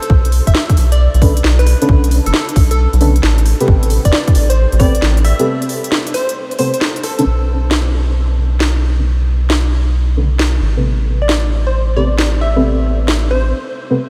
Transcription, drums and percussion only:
0.03 closed hi-hat medium
0.10 kick loud
0.25 closed hi-hat medium
0.32 open hi-hat medium
0.47 kick medium
0.47 closed hi-hat medium
0.55 snare loud
0.70 kick loud
0.70 closed hi-hat medium
0.77 open hi-hat loud
0.92 closed hi-hat medium
1.14 closed hi-hat soft
1.22 kick loud
1.22 open hi-hat loud
1.37 closed hi-hat medium
1.44 snare loud
1.59 closed hi-hat soft
1.67 cross-stick soft
1.67 open hi-hat loud
1.82 closed hi-hat medium
1.89 kick loud
2.04 closed hi-hat medium
2.11 open hi-hat medium
2.26 closed hi-hat medium
2.34 snare loud
2.49 closed hi-hat medium
2.56 kick loud
2.56 open hi-hat loud
2.71 closed hi-hat medium
2.93 closed hi-hat soft
3.01 open hi-hat loud
3.16 closed hi-hat medium
3.23 snare loud
3.38 closed hi-hat soft
3.46 cross-stick soft
3.46 open hi-hat loud
3.60 closed hi-hat medium
3.68 kick loud
3.83 closed hi-hat medium
3.90 open hi-hat loud
4.05 kick medium
4.05 closed hi-hat medium
4.13 snare loud
4.28 kick medium
4.28 closed hi-hat medium
4.35 open hi-hat loud
4.50 closed hi-hat medium
4.72 closed hi-hat soft
4.80 kick loud
4.80 open hi-hat loud
4.95 closed hi-hat medium
5.02 snare loud
5.17 closed hi-hat soft
5.25 cross-stick soft
5.25 open hi-hat loud
5.39 closed hi-hat medium
5.62 closed hi-hat medium
5.69 open hi-hat loud
5.84 closed hi-hat medium
5.92 snare loud
6.07 closed hi-hat medium
6.14 cross-stick soft
6.14 open hi-hat loud
6.29 closed hi-hat medium
6.51 closed hi-hat soft
6.59 open hi-hat loud
6.74 closed hi-hat medium
6.81 snare loud
6.96 closed hi-hat soft
7.04 cross-stick soft
7.04 open hi-hat loud
7.19 closed hi-hat medium
7.71 snare loud
8.60 snare loud
9.50 snare loud
10.39 snare loud
11.29 snare loud
12.18 snare loud
13.08 snare loud

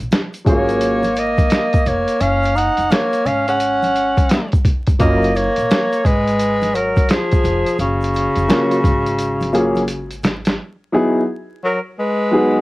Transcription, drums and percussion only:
0.00 shaker soft
0.11 snare loud
0.11 closed hi-hat medium
0.11 high conga soft
0.11 shaker medium
0.34 closed hi-hat soft
0.34 shaker soft
0.46 kick medium
0.46 closed hi-hat medium
0.46 low conga medium
0.46 shaker soft
0.69 closed hi-hat soft
0.69 shaker soft
0.81 closed hi-hat medium
0.81 shaker medium
1.03 closed hi-hat soft
1.03 high conga medium
1.03 shaker soft
1.16 closed hi-hat medium
1.16 shaker soft
1.38 kick medium
1.38 closed hi-hat soft
1.38 high conga medium
1.38 shaker soft
1.50 snare loud
1.50 closed hi-hat medium
1.50 shaker medium
1.73 kick medium
1.73 closed hi-hat soft
1.73 shaker soft
1.86 closed hi-hat medium
1.86 low conga medium
1.86 shaker soft
2.08 closed hi-hat medium
2.08 shaker soft
2.20 closed hi-hat medium
2.20 shaker medium
2.43 closed hi-hat soft
2.43 shaker soft
2.56 closed hi-hat medium
2.56 shaker soft
2.77 closed hi-hat medium
2.77 shaker soft
2.90 snare loud
2.90 closed hi-hat medium
2.90 high conga soft
2.90 shaker medium
3.13 closed hi-hat soft
3.13 shaker soft
3.26 closed hi-hat medium
3.26 low conga medium
3.26 shaker soft
3.48 closed hi-hat soft
3.48 shaker soft
3.60 closed hi-hat medium
3.60 shaker medium
3.82 closed hi-hat soft
3.82 high conga medium
3.82 shaker soft
3.95 closed hi-hat medium
3.95 shaker soft
4.17 kick medium
4.17 closed hi-hat medium
4.17 high conga medium
4.17 shaker soft
4.29 snare loud
4.29 closed hi-hat medium
4.29 shaker medium
4.52 kick medium
4.52 closed hi-hat soft
4.52 shaker soft
4.65 kick medium
4.65 closed hi-hat medium
4.65 low conga medium
4.65 shaker soft
4.87 kick medium
4.87 closed hi-hat medium
4.87 shaker soft
5.00 kick loud
5.00 closed hi-hat medium
5.00 shaker medium
5.23 closed hi-hat soft
5.23 shaker soft
5.35 closed hi-hat medium
5.35 shaker soft
5.56 closed hi-hat medium
5.56 shaker soft
5.70 snare loud
5.70 closed hi-hat medium
5.70 high conga soft
5.70 shaker medium
5.92 closed hi-hat soft
5.92 shaker soft
6.05 kick medium
6.05 closed hi-hat medium
6.05 low conga medium
6.05 shaker soft
6.28 closed hi-hat soft
6.28 shaker soft
6.39 closed hi-hat medium
6.39 shaker medium
6.62 closed hi-hat soft
6.62 high conga medium
6.62 shaker soft
6.74 closed hi-hat medium
6.74 shaker soft
6.96 kick medium
6.96 closed hi-hat medium
6.96 high conga medium
6.96 shaker soft
7.09 snare loud
7.09 closed hi-hat medium
7.09 shaker medium
7.31 kick medium
7.31 closed hi-hat soft
7.31 shaker soft
7.44 closed hi-hat medium
7.44 low conga medium
7.44 shaker soft
7.66 closed hi-hat medium
7.66 shaker soft
7.79 closed hi-hat medium
7.79 shaker medium
8.01 closed hi-hat soft
8.01 shaker soft
8.14 closed hi-hat medium
8.14 shaker soft
8.35 closed hi-hat medium
8.35 shaker soft
8.49 snare loud
8.49 closed hi-hat medium
8.49 high conga soft
8.49 shaker medium
8.71 closed hi-hat soft
8.71 shaker soft
8.84 kick medium
8.84 closed hi-hat medium
8.84 low conga medium
8.84 shaker soft
9.06 closed hi-hat soft
9.06 shaker soft
9.19 closed hi-hat medium
9.19 shaker medium
9.41 closed hi-hat soft
9.41 high conga medium
9.41 shaker soft
9.53 closed hi-hat medium
9.53 shaker soft
9.75 closed hi-hat soft
9.75 high conga medium
9.75 shaker soft
9.88 closed hi-hat medium
9.88 shaker medium
10.10 closed hi-hat soft
10.10 shaker soft
10.23 snare loud
10.23 closed hi-hat medium
10.23 low conga medium
10.23 shaker soft
10.45 snare medium
10.45 closed hi-hat medium
10.45 shaker soft

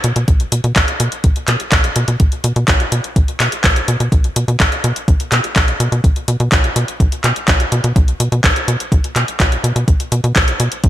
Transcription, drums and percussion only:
0.04 closed hi-hat medium
0.16 closed hi-hat soft
0.28 kick loud
0.28 closed hi-hat medium
0.40 closed hi-hat soft
0.52 closed hi-hat medium
0.64 closed hi-hat soft
0.76 kick loud
0.76 clap loud
0.76 closed hi-hat medium
0.88 closed hi-hat soft
1.00 closed hi-hat medium
1.12 closed hi-hat soft
1.24 kick loud
1.24 closed hi-hat medium
1.36 closed hi-hat soft
1.48 clap medium
1.48 closed hi-hat medium
1.60 closed hi-hat soft
1.72 kick loud
1.72 clap loud
1.72 closed hi-hat medium
1.84 closed hi-hat soft
1.96 closed hi-hat medium
2.08 closed hi-hat soft
2.20 kick loud
2.20 closed hi-hat medium
2.32 closed hi-hat soft
2.44 closed hi-hat medium
2.56 closed hi-hat soft
2.68 kick loud
2.68 clap loud
2.68 closed hi-hat medium
2.80 closed hi-hat soft
2.92 closed hi-hat medium
3.04 closed hi-hat soft
3.16 kick loud
3.16 closed hi-hat medium
3.28 closed hi-hat soft
3.40 clap medium
3.40 closed hi-hat medium
3.52 closed hi-hat soft
3.64 kick loud
3.64 clap loud
3.64 closed hi-hat medium
3.76 closed hi-hat soft
3.88 closed hi-hat medium
4.00 closed hi-hat soft
4.12 kick loud
4.12 closed hi-hat medium
4.24 closed hi-hat soft
4.36 closed hi-hat medium
4.48 closed hi-hat soft
4.60 kick loud
4.60 clap loud
4.60 closed hi-hat medium
4.72 closed hi-hat soft
4.84 closed hi-hat medium
4.96 closed hi-hat soft
5.08 kick loud
5.08 closed hi-hat medium
5.20 closed hi-hat soft
5.32 clap medium
5.32 closed hi-hat medium
5.44 closed hi-hat soft
5.56 kick loud
5.56 clap loud
5.56 closed hi-hat medium
5.68 closed hi-hat soft
5.80 closed hi-hat medium
5.92 closed hi-hat soft
6.04 kick loud
6.04 closed hi-hat medium
6.16 closed hi-hat soft
6.28 closed hi-hat medium
6.40 closed hi-hat soft
6.52 kick loud
6.52 clap loud
6.52 closed hi-hat medium
6.64 closed hi-hat soft
6.76 closed hi-hat medium
6.88 closed hi-hat soft
7.00 kick loud
7.00 closed hi-hat medium
7.12 closed hi-hat soft
7.24 clap medium
7.24 closed hi-hat medium
7.36 closed hi-hat soft
7.48 kick loud
7.48 clap loud
7.48 closed hi-hat medium
7.60 closed hi-hat soft
7.72 closed hi-hat medium
7.84 closed hi-hat soft
7.96 kick loud
7.96 closed hi-hat medium
8.08 closed hi-hat soft
8.20 closed hi-hat medium
8.32 closed hi-hat soft
8.44 kick loud
8.44 clap loud
8.44 closed hi-hat medium
8.56 closed hi-hat soft
8.68 closed hi-hat medium
8.80 closed hi-hat soft
8.92 kick loud
8.92 closed hi-hat medium
9.04 closed hi-hat soft
9.16 clap medium
9.16 closed hi-hat medium
9.28 closed hi-hat soft
9.40 kick medium
9.40 clap loud
9.40 closed hi-hat medium
9.52 closed hi-hat soft
9.64 closed hi-hat medium
9.76 closed hi-hat soft
9.88 kick loud
9.88 closed hi-hat medium
10.00 closed hi-hat soft
10.12 closed hi-hat medium
10.24 closed hi-hat soft
10.36 kick loud
10.36 clap loud
10.36 closed hi-hat medium
10.48 closed hi-hat soft
10.60 closed hi-hat medium
10.72 closed hi-hat soft
10.84 kick loud
10.84 closed hi-hat medium

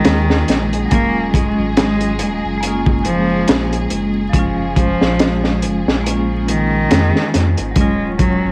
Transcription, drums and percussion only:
0.05 snare loud
0.05 closed hi-hat medium
0.30 snare soft
0.48 snare medium
0.48 closed hi-hat medium
0.73 closed hi-hat soft
0.91 kick loud
0.91 closed hi-hat medium
1.34 kick loud
1.34 closed hi-hat medium
1.77 snare loud
1.77 closed hi-hat medium
2.01 closed hi-hat soft
2.19 closed hi-hat medium
2.63 closed hi-hat medium
2.86 kick medium
3.05 closed hi-hat medium
3.48 snare loud
3.48 closed hi-hat medium
3.73 closed hi-hat soft
3.90 closed hi-hat medium
4.33 kick loud
4.33 closed hi-hat medium
4.76 kick loud
4.76 closed hi-hat medium
5.01 snare medium
5.19 snare loud
5.19 closed hi-hat medium
5.44 snare soft
5.62 closed hi-hat medium
5.88 snare medium
6.06 closed hi-hat medium
6.48 closed hi-hat medium
6.91 snare loud
6.91 closed hi-hat medium
7.16 snare soft
7.34 snare soft
7.34 closed hi-hat medium
7.58 closed hi-hat soft
7.76 kick loud
7.76 closed hi-hat medium
8.19 kick medium
8.19 closed hi-hat medium

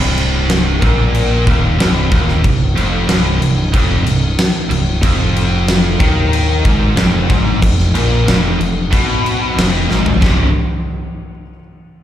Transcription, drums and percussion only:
0.17 crash medium
0.49 snare loud
0.49 crash medium
0.82 kick loud
0.82 crash medium
1.15 crash medium
1.47 kick loud
1.47 crash medium
1.80 snare loud
1.80 crash medium
2.11 kick loud
2.11 crash medium
2.28 snare soft
2.44 kick medium
2.44 crash medium
2.77 crash medium
3.09 snare loud
3.09 crash medium
3.42 crash medium
3.74 kick loud
3.74 crash medium
4.07 crash medium
4.38 snare loud
4.38 crash loud
4.71 crash medium
5.03 kick loud
5.03 crash medium
5.36 crash medium
5.68 snare loud
5.68 crash medium
6.00 kick loud
6.00 crash medium
6.33 crash medium
6.65 kick loud
6.65 crash medium
6.97 snare loud
6.97 crash medium
7.30 kick loud
7.30 crash medium
7.62 kick loud
7.62 crash medium
7.79 snare soft
7.95 crash medium
8.28 snare loud
8.28 crash medium
8.61 crash medium
8.93 kick loud
8.93 crash medium
9.26 crash medium
9.58 snare loud
9.58 crash loud
9.91 snare medium
10.06 floor tom loud
10.22 kick loud
10.22 snare loud
10.22 china medium

